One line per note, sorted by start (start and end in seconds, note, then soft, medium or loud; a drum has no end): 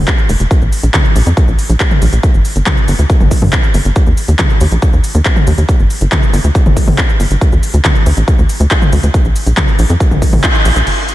0.08 kick loud
0.08 clap loud
0.08 closed hi-hat medium
0.08 shaker soft
0.18 shaker soft
0.29 0.36 F1 medium
0.29 open hi-hat loud
0.29 shaker medium
0.40 0.47 F1 medium
0.40 closed hi-hat medium
0.40 shaker soft
0.51 kick loud
0.51 closed hi-hat medium
0.51 shaker soft
0.62 0.68 A#1 medium
0.62 shaker soft
0.72 open hi-hat loud
0.72 shaker medium
0.83 0.90 A#1 medium
0.83 closed hi-hat medium
0.83 shaker soft
0.94 kick loud
0.94 clap loud
0.94 closed hi-hat medium
0.94 mid tom medium
0.94 shaker soft
1.05 shaker soft
1.16 1.22 A#1 loud
1.16 open hi-hat loud
1.16 shaker medium
1.26 1.33 F2 medium
1.26 closed hi-hat medium
1.26 shaker soft
1.37 kick loud
1.37 closed hi-hat medium
1.37 shaker soft
1.48 1.54 A#1 medium
1.48 shaker soft
1.59 open hi-hat loud
1.59 shaker medium
1.69 1.76 A#1 medium
1.69 closed hi-hat medium
1.69 shaker soft
1.80 kick loud
1.80 clap loud
1.80 closed hi-hat medium
1.80 shaker soft
1.91 mid tom medium
1.91 shaker soft
2.02 2.08 A#1 medium
2.02 open hi-hat loud
2.02 shaker medium
2.13 2.19 A#1 medium
2.13 closed hi-hat medium
2.13 shaker soft
2.23 kick loud
2.23 closed hi-hat medium
2.23 shaker soft
2.34 2.41 G1 medium
2.34 shaker soft
2.45 open hi-hat loud
2.45 shaker medium
2.56 2.62 G1 medium
2.56 closed hi-hat medium
2.56 shaker soft
2.66 kick loud
2.66 clap loud
2.66 closed hi-hat medium
2.66 mid tom medium
2.66 shaker soft
2.77 shaker soft
2.88 2.95 G1 medium
2.88 open hi-hat loud
2.88 shaker medium
2.99 3.05 D2 medium
2.99 closed hi-hat medium
2.99 shaker soft
3.10 kick loud
3.10 closed hi-hat medium
3.10 shaker soft
3.20 3.27 G1 medium
3.20 mid tom medium
3.20 shaker soft
3.31 kick medium
3.31 open hi-hat loud
3.31 shaker medium
3.42 3.49 G2 medium
3.42 mid tom medium
3.42 shaker soft
3.53 kick loud
3.53 clap loud
3.53 closed hi-hat medium
3.53 shaker soft
3.64 shaker soft
3.74 3.81 G1 medium
3.74 open hi-hat loud
3.74 shaker medium
3.85 3.92 G1 medium
3.85 closed hi-hat medium
3.85 shaker soft
3.96 kick loud
3.96 closed hi-hat medium
3.96 shaker soft
4.07 4.13 D#2 medium
4.07 shaker soft
4.17 open hi-hat loud
4.17 shaker medium
4.28 4.35 D#2 medium
4.28 closed hi-hat medium
4.28 shaker soft
4.39 kick loud
4.39 clap loud
4.39 closed hi-hat medium
4.39 mid tom medium
4.39 shaker soft
4.50 shaker soft
4.61 4.67 D#2 medium
4.61 open hi-hat loud
4.61 shaker medium
4.71 4.78 A#1 medium
4.71 closed hi-hat medium
4.71 shaker soft
4.82 kick loud
4.82 closed hi-hat medium
4.82 shaker soft
4.93 5.00 D#2 medium
4.93 shaker soft
5.04 open hi-hat loud
5.04 shaker medium
5.15 5.21 D#2 medium
5.15 closed hi-hat medium
5.15 shaker soft
5.25 kick loud
5.25 clap loud
5.25 closed hi-hat medium
5.25 shaker soft
5.36 mid tom medium
5.36 shaker soft
5.47 5.54 D#2 medium
5.47 open hi-hat loud
5.47 shaker medium
5.58 5.64 D#2 medium
5.58 closed hi-hat medium
5.58 shaker soft
5.69 kick loud
5.69 closed hi-hat medium
5.69 shaker soft
5.79 5.86 G1 medium
5.79 shaker soft
5.90 open hi-hat loud
5.90 shaker medium
6.01 6.08 G1 medium
6.01 closed hi-hat medium
6.01 shaker soft
6.12 kick loud
6.12 clap loud
6.12 closed hi-hat medium
6.12 mid tom medium
6.12 shaker soft
6.23 shaker soft
6.33 6.40 G1 medium
6.33 open hi-hat loud
6.33 shaker medium
6.44 6.51 D2 medium
6.44 closed hi-hat medium
6.44 shaker soft
6.55 kick loud
6.55 closed hi-hat medium
6.55 shaker soft
6.66 6.72 G1 medium
6.66 mid tom medium
6.66 shaker soft
6.77 kick medium
6.77 open hi-hat loud
6.77 shaker medium
6.87 6.94 G1 medium
6.87 mid tom medium
6.87 shaker soft
6.98 kick loud
6.98 clap loud
6.98 closed hi-hat medium
6.98 shaker soft
7.09 shaker soft
7.20 7.26 G1 loud
7.20 open hi-hat loud
7.20 shaker medium
7.31 7.37 G1 medium
7.31 closed hi-hat medium
7.31 shaker soft
7.41 kick loud
7.41 closed hi-hat medium
7.41 shaker soft
7.52 7.59 D2 medium
7.52 shaker soft
7.63 open hi-hat loud
7.63 shaker medium
7.74 7.80 D2 medium
7.74 closed hi-hat medium
7.74 shaker soft
7.85 kick loud
7.85 clap loud
7.85 closed hi-hat medium
7.85 mid tom medium
7.85 shaker soft
7.96 shaker soft
8.06 8.13 D2 medium
8.06 open hi-hat loud
8.06 shaker medium
8.17 8.24 A1 medium
8.17 closed hi-hat medium
8.17 shaker soft
8.28 kick loud
8.28 closed hi-hat medium
8.28 shaker soft
8.39 8.45 D2 medium
8.39 shaker soft
8.49 open hi-hat loud
8.49 shaker medium
8.60 8.67 D2 medium
8.60 closed hi-hat medium
8.60 shaker soft
8.71 kick loud
8.71 clap loud
8.71 closed hi-hat medium
8.71 shaker soft
8.82 mid tom medium
8.82 shaker soft
8.92 8.99 D2 loud
8.92 open hi-hat loud
8.92 shaker medium
9.03 9.10 D2 medium
9.03 closed hi-hat medium
9.03 shaker soft
9.14 kick loud
9.14 closed hi-hat medium
9.14 shaker soft
9.25 9.31 A#1 medium
9.25 shaker soft
9.36 open hi-hat loud
9.36 shaker medium
9.46 9.53 A#1 medium
9.46 closed hi-hat medium
9.46 shaker soft
9.57 kick loud
9.57 clap loud
9.57 closed hi-hat medium
9.57 mid tom medium
9.57 shaker soft
9.68 shaker soft
9.79 9.85 A#1 loud
9.79 open hi-hat loud
9.79 shaker medium
9.90 9.96 F2 medium
9.90 closed hi-hat medium
9.90 shaker soft
10.00 kick loud
10.00 closed hi-hat medium
10.00 shaker soft
10.11 10.18 A#1 medium
10.11 mid tom medium
10.11 shaker soft
10.22 kick medium
10.22 open hi-hat loud
10.22 shaker medium
10.33 10.39 A#1 medium
10.33 open hi-hat medium
10.33 mid tom medium
10.33 shaker soft
10.44 kick loud
10.44 clap loud
10.44 closed hi-hat medium
10.44 shaker soft
10.55 shaker soft
10.65 10.72 A#1 medium
10.65 open hi-hat loud
10.65 shaker medium
10.76 10.82 A#1 medium
10.76 closed hi-hat medium
10.76 shaker soft
10.87 11.15 G1 medium
10.87 closed hi-hat medium
10.87 crash medium
11.09 closed hi-hat medium